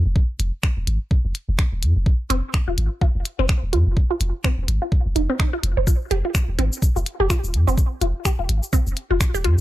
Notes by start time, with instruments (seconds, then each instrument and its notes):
0.06 sub bass F1
0.16 kick
0.39 sub bass F1, closed hi-hat
0.63 finger snap, kick
0.77 sub bass D#1
0.87 sub bass G#1, closed hi-hat
1.11 kick
1.25 sub bass F1
1.35 closed hi-hat
1.49 sub bass F1
1.59 finger snap, kick
1.73 sub bass D#1
1.82 sub bass F2, closed hi-hat
1.96 sub bass F1
2.06 kick
2.30 sub bass F1, synth arpeggio sound C4, closed hi-hat
2.54 finger snap, kick
2.68 sub bass D#1, synth arpeggio sound F4
2.78 sub bass G#1, closed hi-hat
3.01 synth arpeggio sound F4, kick
3.15 sub bass F1
3.25 closed hi-hat
3.39 sub bass F1, synth arpeggio sound C4
3.49 finger snap, kick
3.63 sub bass D#1
3.73 sub bass F2, synth arpeggio sound F4, closed hi-hat
3.87 sub bass F1
3.97 kick
4.11 synth arpeggio sound F4
4.21 sub bass F1, closed hi-hat
4.44 synth arpeggio sound C4, finger snap, kick
4.58 sub bass D#1
4.68 sub bass G#1, closed hi-hat
4.82 synth arpeggio sound F4
4.92 kick
5.06 sub bass F1
5.16 sub bass F1, synth arpeggio sound D#4, closed hi-hat
5.30 synth arpeggio sound C4
5.39 synth arpeggio sound D#4, finger snap, kick
5.53 synth arpeggio sound F4
5.63 sub bass F1, closed hi-hat
5.77 sub bass F1, synth arpeggio sound C5
5.87 synth arpeggio sound F4, kick, cabasa
6.11 sub bass F1, synth arpeggio sound G4, closed hi-hat
6.25 synth arpeggio sound F4
6.35 finger snap, kick, cabasa
6.49 sub bass D#1
6.59 sub bass G#1, synth arpeggio sound C4, closed hi-hat
6.73 cabasa
6.82 kick, cabasa
6.96 sub bass F1, synth arpeggio sound F4, cabasa
7.06 closed hi-hat
7.20 sub bass F1, synth arpeggio sound G4
7.30 synth arpeggio sound F4, finger snap, kick, cabasa
7.44 sub bass D#1, cabasa
7.54 sub bass F2, closed hi-hat
7.67 sub bass F1, synth arpeggio sound C4, cabasa
7.78 kick, cabasa
8.01 sub bass F1, synth arpeggio sound F4, closed hi-hat
8.25 synth arpeggio sound G4, finger snap, kick, cabasa
8.39 sub bass D#1, synth arpeggio sound F4
8.49 sub bass G#1, closed hi-hat
8.63 cabasa
8.73 synth arpeggio sound C4, kick, cabasa
8.87 sub bass F1, cabasa
8.97 closed hi-hat
9.11 sub bass F1, synth arpeggio sound F4
9.20 finger snap, kick, cabasa
9.34 sub bass D#1, synth arpeggio sound G4, cabasa
9.44 sub bass F2, synth arpeggio sound F4, closed hi-hat